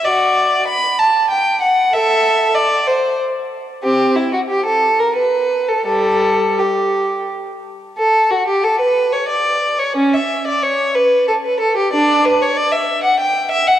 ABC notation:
X:1
M:3/4
L:1/16
Q:1/4=92
K:G
V:1 name="Violin"
[Fd]4 b2 a2 g2 f2 | [Ae]4 d2 c2 z4 | [CG]2 E F G A2 _B =B3 A | [G,A]4 G4 z4 |
[K:D] A2 F G A B2 c d3 c | C e2 d c2 B2 A B A G | [Dd]2 B c d e2 f g2 e f |]